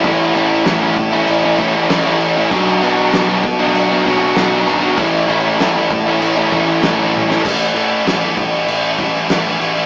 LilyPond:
<<
  \new Staff \with { instrumentName = "Distorted electric guitar" } { \time 4/4 \key a \major \tempo 4 = 97 <a, e a cis' e'>8 <e a cis' e'>16 <a cis' e'>16 <a, e a cis' e'>16 <a cis' e'>8 <a cis' e'>8. <e a cis' e'>8 <a, e a cis' e'>16 <a cis' e'>16 <e a cis' e'>16 <a cis' e'>16 | <b, fis b d' fis'>8 <fis b d' fis'>16 <b d' fis'>16 <b, fis b d' fis'>16 <b d' fis'>8 <b d' fis'>8. <fis b d' fis'>8 <b, fis b d' fis'>16 <b d' fis'>16 <fis b d' fis'>16 <b d' fis'>16 | <a, e a cis' e'>8 <e a cis' e'>16 <a cis' e'>16 <a, e a cis' e'>16 <a cis' e'>8 <a cis' e'>8. <e a cis' e'>8 <a, e a cis' e'>16 <a cis' e'>16 <e a cis' e'>16 <a cis' e'>16 | <a, e a cis' e'>8 <e a cis' e'>16 <a cis' e'>16 <a, e a cis' e'>16 <a cis' e'>8 <a cis' e'>8. <e a cis' e'>8 <a, e a cis' e'>16 <a cis' e'>16 <e a cis' e'>16 <a cis' e'>16 | }
  \new Staff \with { instrumentName = "Overdriven electric guitar" } { \time 4/4 \key a \major <a, e a cis' e'>8 <e a cis' e'>8 <a, e a cis' e'>16 <a cis' e'>8 <a cis' e'>8 <a cis' e'>16 <e a cis' e'>16 <a cis' e'>16 <a, e a cis' e'>16 <a cis' e'>8 <a cis' e'>16 | <b, fis b d' fis'>8 <fis b d' fis'>8 <b, fis b d' fis'>16 <b d' fis'>8 <b d' fis'>8 <b d' fis'>16 <fis b d' fis'>16 <b d' fis'>16 <b, fis b d' fis'>16 <b d' fis'>8 <b d' fis'>16 | <a, e a cis' e'>8 <e a cis' e'>8 <a, e a cis' e'>16 <a cis' e'>8 <a cis' e'>8 <a cis' e'>16 <e a cis' e'>16 <a cis' e'>16 <a, e a cis' e'>16 <a cis' e'>8 <a cis' e'>16 | r1 | }
  \new Staff \with { instrumentName = "Picked electric bass" } { \clef bass \time 4/4 \key a \major a,,8 a,,8 a,,8 a,,8 a,,8 a,,8 a,,4 | b,,8 b,8 b,,8 b,,8 b,,8 b,,8 b,,8 gis,,8 | a,,8 a,,8 a,,8 a,,8 a,,8 a,,8 a,,4 | a,,8 a,8 a,,8 a,,8 a,,8 a,,8 a,,8 a,,8 | }
  \new DrumStaff \with { instrumentName = "Drums" } \drummode { \time 4/4 <cymc bd>8 cymc8 <cymc sn>8 <cymc bd>8 cymc8 <cymc bd>8 <cymc sn>8 cymc8 | <cymc bd>8 cymc8 <cymc sn>8 <cymc bd>8 cymc8 <cymc bd>8 <cymc sn>8 cymc8 | <cymc bd>8 cymc8 <cymc sn>8 <cymc bd>8 cymc8 <cymc bd>8 <cymc sn>8 tommh16 sn16 | <cymc bd>8 cymc8 <cymc sn>8 <cymc bd>8 cymc8 <cymc bd>8 <cymc sn>8 cymc8 | }
>>